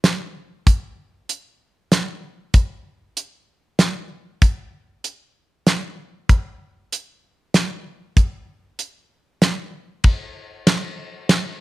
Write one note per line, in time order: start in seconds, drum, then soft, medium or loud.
0.04 snare medium
0.04 closed hi-hat medium
0.67 kick loud
0.67 closed hi-hat medium
1.29 closed hi-hat medium
1.92 snare medium
1.92 closed hi-hat medium
2.54 kick loud
2.54 closed hi-hat medium
3.17 closed hi-hat medium
3.79 snare medium
3.79 closed hi-hat medium
4.42 kick loud
4.42 closed hi-hat medium
5.04 closed hi-hat medium
5.67 snare medium
5.67 closed hi-hat medium
6.29 kick loud
6.29 closed hi-hat medium
6.93 closed hi-hat medium
7.54 snare medium
7.54 closed hi-hat medium
8.17 kick loud
8.17 closed hi-hat medium
8.79 closed hi-hat medium
9.42 snare medium
9.42 closed hi-hat medium
10.04 kick loud
10.04 ride medium
10.67 snare medium
10.67 ride medium
11.29 snare medium
11.29 ride medium